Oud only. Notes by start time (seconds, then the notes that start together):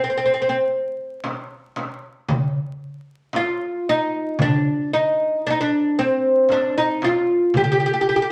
0.04 C4
0.10 C4
0.17 C4
0.26 C4
0.34 C4
0.42 C4
0.49 C4
3.36 F4
3.89 D#4
4.42 D4
4.93 D#4
5.47 D4 D#4
5.61 D4
5.99 C4
6.52 D4
6.78 D#4
7.04 F4
7.57 G4
7.64 G4
7.72 G4
7.80 G4
7.86 G4
7.93 G4
8.01 G4
8.09 G4
8.16 G4
8.22 G4